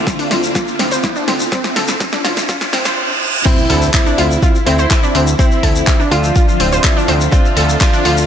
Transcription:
Already playing: D3 C4 E4 F4, riser
0.07 kick, snare, shekere
0.19 D4, open hi-hat, shekere
0.31 D2 F4, snare, open hi-hat
0.43 shekere
0.55 F4, kick, snare, shekere
0.67 shekere
0.79 D2 C4, snare, open hi-hat
0.92 C5, shekere
1.03 E4, kick, snare, shekere
1.16 D4, shekere
1.28 D2 C4, snare, open hi-hat
1.40 shekere
1.52 C4, kick, snare, shekere
1.64 snare, shekere
1.76 D2 A4, snare, open hi-hat
1.88 snare, shekere
2.00 kick, snare, shekere
2.12 D4, snare, shekere
2.24 D2 F4, snare, open hi-hat
2.37 snare, open hi-hat, shekere
2.49 F4, kick, snare, reverse cymbal, shekere
2.61 snare, shekere
2.73 D1 C4, snare, open hi-hat
2.85 C5, snare, shekere
3.45 D3 F3 C4 E4 C5 E5, kick, closed hi-hat, crash, impact, shekere
3.58 shekere
3.70 D2 A4 A5, snare, closed hi-hat, open hi-hat
3.82 closed hi-hat, shekere
3.94 C4 E4, kick, snare, clap, open hi-hat, shekere
4.06 D4 D5, shekere
4.18 D2 F4 F5, closed hi-hat, open hi-hat
4.31 shekere
4.42 F4 F5, kick, closed hi-hat, shekere
4.55 shekere
4.66 D2 C4 E4 C5, closed hi-hat, open hi-hat
4.79 C5 C6, shekere
4.90 E4 E5, kick, snare, clap, closed hi-hat, shekere
5.03 D4 D5, shekere
5.15 D2 C4 C5, closed hi-hat, open hi-hat
5.27 shekere
5.39 C4 E4 C5, kick, closed hi-hat, shekere
5.51 shekere
5.63 D2 A4 A5, kick, snare, closed hi-hat, open hi-hat
5.75 shekere
5.87 kick, snare, clap, closed hi-hat, shekere
6.00 D4 D5, snare, shekere
6.11 D2 D4 F4 F5, closed hi-hat, open hi-hat
6.24 closed hi-hat, shekere
6.35 F4 F5, kick, closed hi-hat, shekere
6.49 shekere
6.60 D1 C4 C5, closed hi-hat, open hi-hat
6.72 C5 C6, shekere
6.83 E4 E5, kick, snare, clap, closed hi-hat, shekere
6.97 D4 D5, shekere
7.08 D2 C4 C5, closed hi-hat, open hi-hat
7.21 shekere
7.32 C4 D4 F4 C5, kick, closed hi-hat, shekere
7.45 shekere
7.57 D2 A4 A5, snare, closed hi-hat, open hi-hat
7.69 closed hi-hat, shekere
7.80 D4 F4, kick, snare, clap, open hi-hat, shekere
7.93 D4 D5, shekere
8.05 D2 F4 F5, closed hi-hat, open hi-hat
8.17 shekere

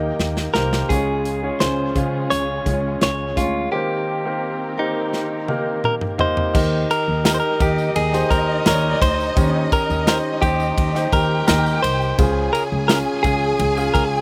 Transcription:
Already playing: D#2 A#2 D#3 A#3 D#4 G4 A#4 C5 D#5 G5
0.19 D#2, snare
0.37 snare
0.54 C2 A#3 D#4 G4 A#4 C5, snare
0.73 snare
0.89 C#2 C#3 G#3 C#4 F4 G#4 C#5, kick, closed hi-hat
1.25 closed hi-hat
1.43 G#3 C#4 F4 C#5
1.60 C#2 C5, snare, closed hi-hat
1.95 C#3 G#3 C#4 F4 F5, kick, closed hi-hat
2.30 C#2 C#5, closed hi-hat
2.66 C#2 G#3 C#4 F4 C#5, kick, closed hi-hat
3.01 C#2 C#5, snare, closed hi-hat
3.36 D2 G#3 C#4 F4 C#5, kick, closed hi-hat
3.71 D#3 A#3 C4 D#4 G4 A#4 C5
4.25 A#3 D#4 G4 C5
4.78 A#3 D#4 G4 C5
5.13 snare
5.48 A#3 D#4 G4 A#4, high tom
5.84 A#4, mid tom
6.01 mid tom
6.18 A#3 D#4 G4 C5 D#5, floor tom
6.37 floor tom
6.54 D#2 D#3 D#4 G4 A#4 D#5, kick, crash, tambourine
6.91 A#4, ride, tambourine
7.08 D#2
7.24 D#4 G4 A#4, snare, ride, tambourine
7.34 C5
7.40 A#4
7.60 D#2 D#4 G4 A#4, kick, ride, tambourine
7.78 tambourine
7.96 D#2 G#4, ride
8.12 D#4 G4 C5, snare, tambourine
8.30 D#2 A#4, kick, ride, tambourine
8.66 D#2 D#4 G4 A#4 C#5, snare, ride, tambourine
9.02 D2 C5, kick, ride, tambourine
9.20 tambourine
9.36 D#2 D#3 C#4 D#4 G4, kick, ride, tambourine
9.72 A#4, kick, ride, tambourine
9.90 D#2, tambourine
10.07 D#4 G4 A#4 C5, snare, ride, tambourine
10.41 D#2 D#4 G4 C5, kick, ride, tambourine
10.60 tambourine
10.78 D#2, kick, ride
10.95 D#4 G4 C5, snare, tambourine
11.13 D#2 G4 A#4 G5, kick, ride, tambourine
11.48 D#2 D#4 G4 A#4, snare, ride, tambourine
11.66 tambourine
11.83 C2 C5, ride, tambourine
12.02 tambourine
12.17 C#2 C#3 C#4 F4 G#4 G#5, kick, ride, tambourine
12.53 A#4, ride, tambourine
12.72 C#2
12.88 C#4 F4 G#4 A#4, snare, ride, tambourine
13.23 C#2 C#4 F4 G#4, kick, ride, tambourine
13.59 C#2, ride
13.77 C#4 F4 G#4, tambourine
13.94 C#2 A#4, kick, ride, tambourine

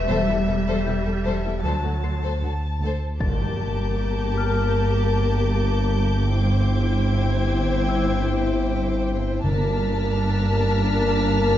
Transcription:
Already playing: E1 E5
0.08 E1 E2 G3 A4 C5
0.28 E2 E4 A4
0.47 E1 E2 A4
0.67 E2 A4 C5
0.86 E1 E2 E4 A4 G5 G6
1.06 E2 A4
1.25 E1 E2 A4 C5
1.45 E2 E4 A4
1.64 D2 F#3 A4 C5 A5
1.84 D2 F#4 A4
2.03 D2 A4 C6 C7
2.23 D2 A4 C5
2.43 D2 F#4 A4
2.81 D2 A4 C5
3.19 G1 G2 A#3 G4 A#4 A5 D6 G6 A6, impact
4.38 F6
6.31 C4 E4 C5 G5
6.98 G#6
7.88 G5 E6
9.43 G1 G2 A#3 D4 A#4 A5 F6 B6

